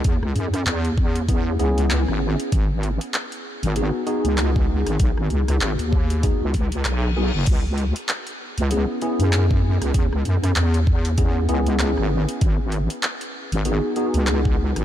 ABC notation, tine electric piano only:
X:1
M:4/4
L:1/8
Q:"Swing 16ths" 1/4=97
K:C#m
V:1 name="Tine electric piano"
[B,CEG]4 [B,CEG] [B,CEG]3 | z4 [B,DFG] [B,DFG]3- | [B,DFG]4 [B,DFG] z2 [B,DFG] | z4 [B,CEG] [B,CEG]3- |
[B,CEG]4 [B,CEG] [B,CEG]3 | z4 [B,DFG] [B,DFG]3 |]